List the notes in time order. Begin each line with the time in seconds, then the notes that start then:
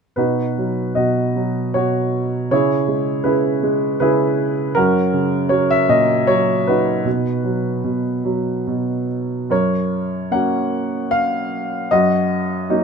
0.16 B2 D#4 F#4 B4
0.58 F#3
0.95 B2 F#4 D#5
1.36 F#3
1.74 B2 F#4 C#5
2.51 C#3 E4 G#4 C#5
2.88 G#3
3.24 C#3 E4 G#4 B4
3.63 G#3
4.00 C#3 E4 G#4 B4
4.75 F#2 C#4 F#4 A#4
5.13 C#3
5.49 F#3 C#5
5.71 E5
5.89 A#2 D#5
6.27 F#3 C#5
6.67 D#4 F#4 B4
7.05 B2
7.44 F#3
7.84 B2
8.24 F#3
8.67 B2
9.50 F#2 A#4 C#5
10.31 A#3 C#4 F#4 F#5
11.11 F5
11.91 F#2 F#4 D#5
12.69 F#3 A#3 D#4